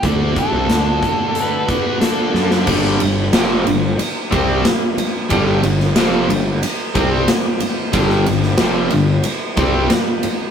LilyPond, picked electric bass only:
\new Staff \with { instrumentName = "Picked electric bass" } { \clef bass \time 4/4 \key g \major \tempo 4 = 91 d,8 r16 c,16 d,8 r2 fis,8 | g,,8 g,,8 f,,8 g,,8 r8 c,8 r4 | g,,8 g,,8 f,,8 g,,8 r8 c,8 r4 | g,,8 g,,8 f,,8 g,,8 r8 c,8 r4 | }